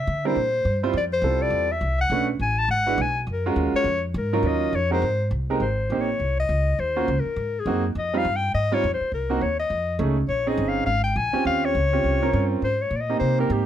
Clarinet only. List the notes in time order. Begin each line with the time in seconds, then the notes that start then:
Already playing: E5
0.27 C5
0.97 D5
1.13 C5
1.42 D5
1.72 E5
2.01 F#5
2.42 G#5
2.59 A5
2.71 F#5
3.02 G#5
3.33 A#4
3.76 C#5
4.18 A#4
4.48 D#5
4.76 C#5
4.93 C5
5.62 C5
6.01 C#5
6.40 D#5
6.80 C5
7.20 A#4
7.60 G#4
7.99 D#5
8.18 F5
8.36 G5
8.55 D#5
8.74 C#5
8.94 C5
9.14 A#4
9.42 C#5
9.60 D#5
10.29 C#5
10.49 D#5
10.69 F5
10.86 F5
11.04 G5
11.17 G#5
11.47 F5
11.65 C#5
12.64 C5
12.82 C#5
12.97 D5
13.01 D#5
13.20 C5
13.40 A#4
13.53 G4